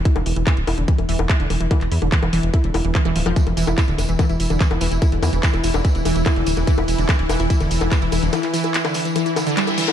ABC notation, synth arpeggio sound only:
X:1
M:4/4
L:1/16
Q:1/4=145
K:Ddor
V:1 name="Synth arpeggio sound" clef=bass
E D, E, E, E, z E D, E, E, E, z E D, E, E, | E, z E D, E, E, E, z E D, E E, E, E, F, F, | E, E, E, E E D, E, E, E, E E D, E, E, E, E | E D, E, E, E, E E D, E, E, E, E E D, E, E, |
E, E E D, E, E, E, E E D, E, E, E, E E D, | E, E, E, E E D, E, E, E, E D, D, G, E E, z |]